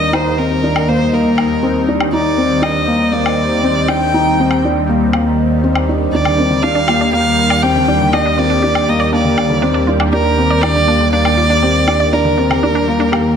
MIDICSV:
0, 0, Header, 1, 7, 480
1, 0, Start_track
1, 0, Key_signature, -3, "major"
1, 0, Tempo, 500000
1, 127, Time_signature, 4, 2, 24, 8
1, 12830, End_track
2, 0, Start_track
2, 0, Title_t, "Violin"
2, 0, Program_c, 0, 40
2, 0, Note_on_c, 0, 75, 84
2, 129, Note_on_c, 0, 72, 77
2, 144, Note_off_c, 0, 75, 0
2, 368, Note_on_c, 0, 70, 75
2, 383, Note_off_c, 0, 72, 0
2, 852, Note_on_c, 0, 72, 80
2, 866, Note_off_c, 0, 70, 0
2, 1090, Note_on_c, 0, 70, 69
2, 1105, Note_off_c, 0, 72, 0
2, 1809, Note_off_c, 0, 70, 0
2, 2051, Note_on_c, 0, 74, 68
2, 2518, Note_on_c, 0, 75, 69
2, 2532, Note_off_c, 0, 74, 0
2, 3000, Note_on_c, 0, 74, 75
2, 3014, Note_off_c, 0, 75, 0
2, 3734, Note_on_c, 0, 79, 87
2, 3748, Note_off_c, 0, 74, 0
2, 4450, Note_off_c, 0, 79, 0
2, 5884, Note_on_c, 0, 74, 71
2, 6364, Note_on_c, 0, 77, 79
2, 6378, Note_off_c, 0, 74, 0
2, 6842, Note_off_c, 0, 77, 0
2, 6848, Note_on_c, 0, 77, 88
2, 7323, Note_on_c, 0, 79, 85
2, 7337, Note_off_c, 0, 77, 0
2, 7800, Note_on_c, 0, 75, 75
2, 7815, Note_off_c, 0, 79, 0
2, 8052, Note_on_c, 0, 74, 84
2, 8066, Note_off_c, 0, 75, 0
2, 8537, Note_on_c, 0, 75, 77
2, 8551, Note_off_c, 0, 74, 0
2, 8772, Note_off_c, 0, 75, 0
2, 8777, Note_on_c, 0, 74, 71
2, 9454, Note_off_c, 0, 74, 0
2, 9725, Note_on_c, 0, 70, 84
2, 10192, Note_on_c, 0, 74, 98
2, 10206, Note_off_c, 0, 70, 0
2, 10672, Note_off_c, 0, 74, 0
2, 10677, Note_on_c, 0, 74, 102
2, 11650, Note_on_c, 0, 70, 78
2, 11664, Note_off_c, 0, 74, 0
2, 12830, Note_off_c, 0, 70, 0
2, 12830, End_track
3, 0, Start_track
3, 0, Title_t, "Synth arpeggio sound"
3, 0, Program_c, 1, 84
3, 5886, Note_on_c, 1, 62, 73
3, 5982, Note_off_c, 1, 62, 0
3, 6009, Note_on_c, 1, 50, 68
3, 6071, Note_off_c, 1, 50, 0
3, 6130, Note_on_c, 1, 62, 70
3, 6223, Note_off_c, 1, 62, 0
3, 6248, Note_on_c, 1, 50, 65
3, 6343, Note_off_c, 1, 50, 0
3, 6365, Note_on_c, 1, 62, 83
3, 6461, Note_off_c, 1, 62, 0
3, 6481, Note_on_c, 1, 62, 97
3, 6579, Note_off_c, 1, 62, 0
3, 6603, Note_on_c, 1, 65, 68
3, 6668, Note_off_c, 1, 65, 0
3, 6729, Note_on_c, 1, 62, 88
3, 6791, Note_off_c, 1, 62, 0
3, 6846, Note_on_c, 1, 67, 76
3, 6941, Note_off_c, 1, 67, 0
3, 7202, Note_on_c, 1, 74, 89
3, 7300, Note_off_c, 1, 74, 0
3, 7324, Note_on_c, 1, 62, 73
3, 7421, Note_off_c, 1, 62, 0
3, 7450, Note_on_c, 1, 50, 67
3, 7512, Note_off_c, 1, 50, 0
3, 7568, Note_on_c, 1, 62, 64
3, 7663, Note_off_c, 1, 62, 0
3, 7689, Note_on_c, 1, 50, 75
3, 7783, Note_off_c, 1, 50, 0
3, 7809, Note_on_c, 1, 62, 92
3, 7903, Note_off_c, 1, 62, 0
3, 7924, Note_on_c, 1, 62, 88
3, 8021, Note_off_c, 1, 62, 0
3, 8041, Note_on_c, 1, 65, 71
3, 8107, Note_off_c, 1, 65, 0
3, 8158, Note_on_c, 1, 62, 84
3, 8226, Note_off_c, 1, 62, 0
3, 8279, Note_on_c, 1, 67, 74
3, 8378, Note_off_c, 1, 67, 0
3, 8638, Note_on_c, 1, 74, 96
3, 8738, Note_off_c, 1, 74, 0
3, 8762, Note_on_c, 1, 62, 75
3, 8860, Note_off_c, 1, 62, 0
3, 8880, Note_on_c, 1, 50, 67
3, 8947, Note_off_c, 1, 50, 0
3, 9000, Note_on_c, 1, 62, 67
3, 9099, Note_off_c, 1, 62, 0
3, 9121, Note_on_c, 1, 50, 72
3, 9219, Note_off_c, 1, 50, 0
3, 9237, Note_on_c, 1, 62, 88
3, 9337, Note_off_c, 1, 62, 0
3, 9353, Note_on_c, 1, 62, 93
3, 9455, Note_off_c, 1, 62, 0
3, 9477, Note_on_c, 1, 65, 64
3, 9546, Note_off_c, 1, 65, 0
3, 9599, Note_on_c, 1, 62, 98
3, 9666, Note_off_c, 1, 62, 0
3, 9723, Note_on_c, 1, 67, 79
3, 9820, Note_off_c, 1, 67, 0
3, 10085, Note_on_c, 1, 74, 88
3, 10181, Note_off_c, 1, 74, 0
3, 10205, Note_on_c, 1, 62, 69
3, 10301, Note_off_c, 1, 62, 0
3, 10326, Note_on_c, 1, 50, 69
3, 10390, Note_off_c, 1, 50, 0
3, 10446, Note_on_c, 1, 62, 67
3, 10542, Note_off_c, 1, 62, 0
3, 10564, Note_on_c, 1, 50, 76
3, 10661, Note_off_c, 1, 50, 0
3, 10682, Note_on_c, 1, 62, 89
3, 10780, Note_off_c, 1, 62, 0
3, 10805, Note_on_c, 1, 62, 92
3, 10901, Note_off_c, 1, 62, 0
3, 10919, Note_on_c, 1, 65, 67
3, 10987, Note_off_c, 1, 65, 0
3, 11041, Note_on_c, 1, 62, 91
3, 11107, Note_off_c, 1, 62, 0
3, 11162, Note_on_c, 1, 67, 75
3, 11260, Note_off_c, 1, 67, 0
3, 11521, Note_on_c, 1, 74, 95
3, 11619, Note_off_c, 1, 74, 0
3, 11641, Note_on_c, 1, 62, 73
3, 11739, Note_off_c, 1, 62, 0
3, 11761, Note_on_c, 1, 50, 72
3, 11827, Note_off_c, 1, 50, 0
3, 11881, Note_on_c, 1, 62, 69
3, 11979, Note_off_c, 1, 62, 0
3, 12004, Note_on_c, 1, 50, 66
3, 12101, Note_off_c, 1, 50, 0
3, 12125, Note_on_c, 1, 62, 88
3, 12221, Note_off_c, 1, 62, 0
3, 12241, Note_on_c, 1, 62, 98
3, 12339, Note_off_c, 1, 62, 0
3, 12364, Note_on_c, 1, 65, 64
3, 12429, Note_off_c, 1, 65, 0
3, 12479, Note_on_c, 1, 62, 96
3, 12547, Note_off_c, 1, 62, 0
3, 12598, Note_on_c, 1, 67, 75
3, 12698, Note_off_c, 1, 67, 0
3, 12830, End_track
4, 0, Start_track
4, 0, Title_t, "Felt piano"
4, 0, Program_c, 2, 0
4, 0, Note_on_c, 2, 62, 60
4, 102, Note_off_c, 2, 62, 0
4, 124, Note_on_c, 2, 63, 80
4, 341, Note_off_c, 2, 63, 0
4, 367, Note_on_c, 2, 60, 60
4, 583, Note_off_c, 2, 60, 0
4, 610, Note_on_c, 2, 62, 69
4, 824, Note_off_c, 2, 62, 0
4, 846, Note_on_c, 2, 58, 61
4, 1062, Note_off_c, 2, 58, 0
4, 1085, Note_on_c, 2, 58, 74
4, 1517, Note_off_c, 2, 58, 0
4, 1562, Note_on_c, 2, 60, 67
4, 1780, Note_off_c, 2, 60, 0
4, 1808, Note_on_c, 2, 62, 63
4, 2023, Note_off_c, 2, 62, 0
4, 2045, Note_on_c, 2, 63, 78
4, 2261, Note_off_c, 2, 63, 0
4, 2283, Note_on_c, 2, 60, 62
4, 2500, Note_off_c, 2, 60, 0
4, 2516, Note_on_c, 2, 62, 70
4, 2736, Note_off_c, 2, 62, 0
4, 2759, Note_on_c, 2, 58, 62
4, 2978, Note_off_c, 2, 58, 0
4, 3004, Note_on_c, 2, 58, 69
4, 3436, Note_off_c, 2, 58, 0
4, 3490, Note_on_c, 2, 60, 70
4, 3704, Note_off_c, 2, 60, 0
4, 3729, Note_on_c, 2, 62, 60
4, 3943, Note_off_c, 2, 62, 0
4, 3976, Note_on_c, 2, 63, 79
4, 4187, Note_off_c, 2, 63, 0
4, 4222, Note_on_c, 2, 60, 58
4, 4430, Note_off_c, 2, 60, 0
4, 4463, Note_on_c, 2, 62, 66
4, 4671, Note_off_c, 2, 62, 0
4, 4695, Note_on_c, 2, 58, 61
4, 4907, Note_off_c, 2, 58, 0
4, 4934, Note_on_c, 2, 58, 73
4, 5361, Note_off_c, 2, 58, 0
4, 5411, Note_on_c, 2, 60, 65
4, 5624, Note_off_c, 2, 60, 0
4, 5655, Note_on_c, 2, 62, 60
4, 5867, Note_off_c, 2, 62, 0
4, 5900, Note_on_c, 2, 62, 80
4, 6110, Note_off_c, 2, 62, 0
4, 6141, Note_on_c, 2, 60, 61
4, 6350, Note_off_c, 2, 60, 0
4, 6372, Note_on_c, 2, 62, 72
4, 6585, Note_off_c, 2, 62, 0
4, 6614, Note_on_c, 2, 58, 65
4, 6826, Note_off_c, 2, 58, 0
4, 6850, Note_on_c, 2, 58, 73
4, 7279, Note_off_c, 2, 58, 0
4, 7328, Note_on_c, 2, 60, 72
4, 7543, Note_off_c, 2, 60, 0
4, 7566, Note_on_c, 2, 62, 60
4, 7782, Note_off_c, 2, 62, 0
4, 7807, Note_on_c, 2, 62, 83
4, 8023, Note_off_c, 2, 62, 0
4, 8043, Note_on_c, 2, 60, 61
4, 8260, Note_off_c, 2, 60, 0
4, 8290, Note_on_c, 2, 62, 70
4, 8504, Note_off_c, 2, 62, 0
4, 8529, Note_on_c, 2, 58, 61
4, 8743, Note_off_c, 2, 58, 0
4, 8762, Note_on_c, 2, 58, 75
4, 9195, Note_off_c, 2, 58, 0
4, 9241, Note_on_c, 2, 60, 70
4, 9459, Note_off_c, 2, 60, 0
4, 9489, Note_on_c, 2, 62, 64
4, 9703, Note_off_c, 2, 62, 0
4, 9724, Note_on_c, 2, 62, 86
4, 9941, Note_off_c, 2, 62, 0
4, 9968, Note_on_c, 2, 60, 64
4, 10183, Note_off_c, 2, 60, 0
4, 10210, Note_on_c, 2, 62, 71
4, 10424, Note_off_c, 2, 62, 0
4, 10438, Note_on_c, 2, 58, 65
4, 10657, Note_off_c, 2, 58, 0
4, 10680, Note_on_c, 2, 58, 72
4, 11114, Note_off_c, 2, 58, 0
4, 11163, Note_on_c, 2, 60, 74
4, 11380, Note_off_c, 2, 60, 0
4, 11403, Note_on_c, 2, 62, 68
4, 11620, Note_off_c, 2, 62, 0
4, 11646, Note_on_c, 2, 62, 83
4, 11862, Note_off_c, 2, 62, 0
4, 11887, Note_on_c, 2, 60, 66
4, 12102, Note_off_c, 2, 60, 0
4, 12128, Note_on_c, 2, 62, 72
4, 12343, Note_off_c, 2, 62, 0
4, 12367, Note_on_c, 2, 58, 71
4, 12582, Note_off_c, 2, 58, 0
4, 12605, Note_on_c, 2, 58, 79
4, 12830, Note_off_c, 2, 58, 0
4, 12830, End_track
5, 0, Start_track
5, 0, Title_t, "Analog synth pad"
5, 0, Program_c, 3, 89
5, 0, Note_on_c, 3, 51, 75
5, 0, Note_on_c, 3, 55, 68
5, 0, Note_on_c, 3, 58, 62
5, 0, Note_on_c, 3, 63, 77
5, 2011, Note_off_c, 3, 58, 0
5, 2033, Note_on_c, 3, 60, 66
5, 5842, Note_off_c, 3, 60, 0
5, 5853, Note_off_c, 3, 63, 0
5, 5875, Note_on_c, 3, 58, 71
5, 5878, Note_on_c, 3, 67, 84
5, 12830, Note_off_c, 3, 51, 0
5, 12830, Note_off_c, 3, 55, 0
5, 12830, Note_off_c, 3, 58, 0
5, 12830, Note_off_c, 3, 67, 0
5, 12830, End_track
6, 0, Start_track
6, 0, Title_t, "Double bass section"
6, 0, Program_c, 4, 48
6, 0, Note_on_c, 4, 39, 65
6, 5865, Note_off_c, 4, 39, 0
6, 5886, Note_on_c, 4, 39, 73
6, 12830, Note_off_c, 4, 39, 0
6, 12830, End_track
7, 0, Start_track
7, 0, Title_t, "Drums"
7, 129, Note_on_c, 9, 77, 54
7, 225, Note_off_c, 9, 77, 0
7, 728, Note_on_c, 9, 77, 58
7, 824, Note_off_c, 9, 77, 0
7, 1325, Note_on_c, 9, 77, 51
7, 1421, Note_off_c, 9, 77, 0
7, 1925, Note_on_c, 9, 77, 52
7, 2021, Note_off_c, 9, 77, 0
7, 2524, Note_on_c, 9, 77, 47
7, 2620, Note_off_c, 9, 77, 0
7, 3127, Note_on_c, 9, 77, 52
7, 3223, Note_off_c, 9, 77, 0
7, 3729, Note_on_c, 9, 77, 51
7, 3825, Note_off_c, 9, 77, 0
7, 4327, Note_on_c, 9, 77, 47
7, 4423, Note_off_c, 9, 77, 0
7, 4928, Note_on_c, 9, 77, 51
7, 5024, Note_off_c, 9, 77, 0
7, 5525, Note_on_c, 9, 77, 47
7, 5621, Note_off_c, 9, 77, 0
7, 6004, Note_on_c, 9, 77, 47
7, 6100, Note_off_c, 9, 77, 0
7, 6605, Note_on_c, 9, 77, 52
7, 6701, Note_off_c, 9, 77, 0
7, 7203, Note_on_c, 9, 77, 49
7, 7299, Note_off_c, 9, 77, 0
7, 7807, Note_on_c, 9, 77, 49
7, 7903, Note_off_c, 9, 77, 0
7, 8403, Note_on_c, 9, 77, 52
7, 8499, Note_off_c, 9, 77, 0
7, 9002, Note_on_c, 9, 77, 49
7, 9098, Note_off_c, 9, 77, 0
7, 9599, Note_on_c, 9, 77, 51
7, 9695, Note_off_c, 9, 77, 0
7, 10205, Note_on_c, 9, 77, 53
7, 10301, Note_off_c, 9, 77, 0
7, 10801, Note_on_c, 9, 77, 49
7, 10897, Note_off_c, 9, 77, 0
7, 11402, Note_on_c, 9, 77, 55
7, 11498, Note_off_c, 9, 77, 0
7, 12007, Note_on_c, 9, 77, 52
7, 12103, Note_off_c, 9, 77, 0
7, 12605, Note_on_c, 9, 77, 53
7, 12701, Note_off_c, 9, 77, 0
7, 12830, End_track
0, 0, End_of_file